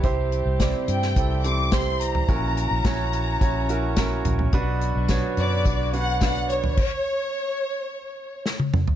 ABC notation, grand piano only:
X:1
M:4/4
L:1/8
Q:1/4=107
K:Bm
V:1 name="Grand piano"
[=CEG=c]2 [CEGd]2 [CEGA] [CEGc] [CEGc]2 | [CEF^A]2 [CEFc]2 [CEFc] [CEFA] [CEFA]2 | [B,DFB]2 [B,DFc]2 [B,DFd] [B,DFB] [B,DFB]2 | z8 |]
V:2 name="Grand piano" clef=bass
=C,3 z4 z | ^A,,3 z4 z | B,,3 z4 z | z8 |]